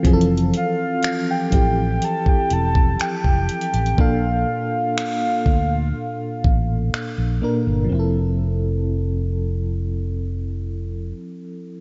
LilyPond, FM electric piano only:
\new Staff \with { instrumentName = "FM electric piano" } { \time 4/4 \key f \major \tempo 4 = 61 <e f c' aes' a'>4~ <e f c' aes' a'>16 r16 <f c' e' g'>4. r4 | <bes, bes d' a'>4. r2 <bes, bes d' bes'>8 | <f c' e' a'>1 | }